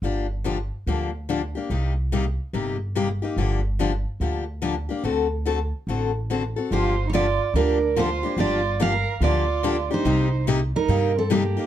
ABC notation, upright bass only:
X:1
M:4/4
L:1/8
Q:"Swing" 1/4=144
K:Gm
V:1 name="Upright bass" clef=bass
G,,,4 D,,4 | C,,4 G,,,4 | G,,,4 D,,4 | D,,4 A,,,4 |
G,,,4 D,,4 | G,,,4 D,,4 | C,,4 G,,4 |]